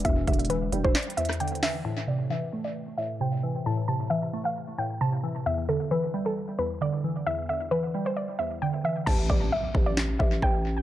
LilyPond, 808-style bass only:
\new Staff \with { instrumentName = "808-style bass" } { \clef bass \time 4/4 \key a \minor \tempo 4 = 133 e,,8 e,,4 e,,16 e,,16 r2 | r1 | r1 | r1 |
r1 | a,,8 a,,8 r8 a,,4 a,,8 a,,4 | }